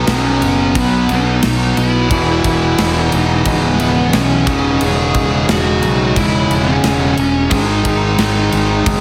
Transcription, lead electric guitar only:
0.10 C#4
0.77 B3
1.11 D#4
1.78 E4
3.05 D#4
3.73 G#3
3.80 B3
4.14 C#4
4.82 G#4
5.51 F#4
6.18 E4
6.64 C#4
7.08 C#4
7.54 D#4

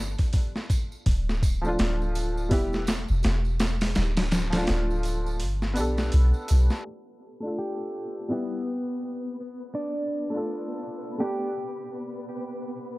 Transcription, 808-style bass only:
Already playing: G1
1.07 D1
1.80 D1
2.52 E1
3.10 E1
3.25 E1
3.97 D1
4.70 D1
5.42 G1
5.78 B1
6.14 B1
6.51 B1

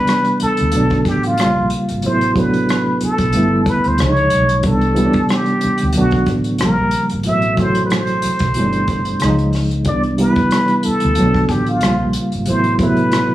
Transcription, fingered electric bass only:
0.42 muted fingered electric bass stroke
0.61 D2
0.75 B1
1.07 A1
1.40 A#1
1.58 A#1
1.91 G#1
2.05 A1
3.03 muted fingered electric bass stroke
3.20 B1
3.36 G1
3.67 muted fingered electric bass stroke
3.86 D2
4.01 C#2
4.34 B1
4.65 C2
5.15 muted fingered electric bass stroke
5.65 muted fingered electric bass stroke
5.83 D2
5.97 B1
6.28 A1
6.62 A#1
6.81 A#1
7.13 G#1
7.28 A1
8.25 muted fingered electric bass stroke
8.42 B1
8.58 G1
9.23 C#2
9.87 C2
10.38 muted fingered electric bass stroke
10.87 muted fingered electric bass stroke
11.04 D2
11.19 B1
11.50 A1
11.84 A#1
12.02 A#1
12.35 G#1
12.49 A1

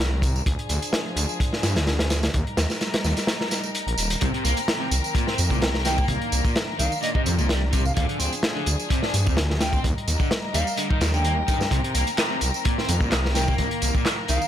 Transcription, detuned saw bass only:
Already playing: C2
0.46 D2
0.70 D2
1.16 D2
1.63 G2
1.76 D2
2.34 D#2
2.57 D#2
3.04 D#2
3.87 A#1
3.98 D#1
4.22 C2
4.45 C2
4.91 C2
5.38 F2
5.50 C2
6.08 C2
6.32 C2
6.79 C2
7.26 F2
7.39 C2
7.97 D2
8.20 D2
8.67 D2
9.14 G2
9.27 D2
9.84 D#2
10.07 D#2
10.54 D#2
11.01 D#2
11.48 G2
11.71 C2
11.95 C2
12.41 C2
12.89 F2
13.01 C2
13.59 C2
13.82 C2
14.29 C2

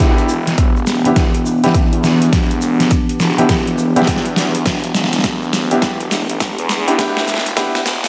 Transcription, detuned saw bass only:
0.00 E1
0.29 E1
0.58 E1
1.16 E1
1.63 A1
1.92 E2
2.33 E1
2.62 E1
3.20 E1
3.49 E1
3.96 E2
4.66 E1
4.95 E1
5.24 E1
5.82 E1
6.30 A1
6.59 E2
6.99 E1
7.28 E1
7.86 E1

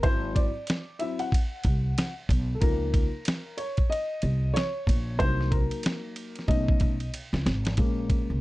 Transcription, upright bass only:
0.04 G#1
1.65 C2
2.29 B1
2.62 C#2
4.23 C2
4.87 A#1
5.20 C2
6.48 B1
6.81 B1
7.33 C#2
7.46 G#1
7.78 A#1
8.30 C2

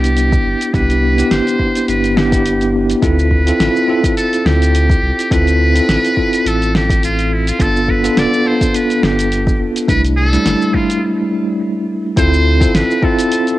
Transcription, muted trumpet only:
Already playing: G4
0.74 B4
1.31 C5
1.89 B4
2.18 G4
3.03 B4
4.17 A4
4.46 G4
5.32 B4
6.47 A4
6.76 G4
7.05 F4
7.33 E4
7.49 F4
7.62 A4
7.90 B4
8.19 D5
8.47 C5
8.76 B4
9.04 G4
9.89 B4
10.17 A4
10.75 F4
12.18 C5
12.76 B4
13.04 A4

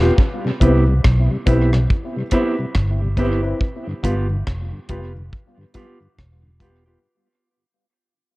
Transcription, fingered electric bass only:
0.62 C2
1.05 B1
1.47 B1
2.76 G1
4.05 G1
4.48 F1
4.90 F1
6.19 E1

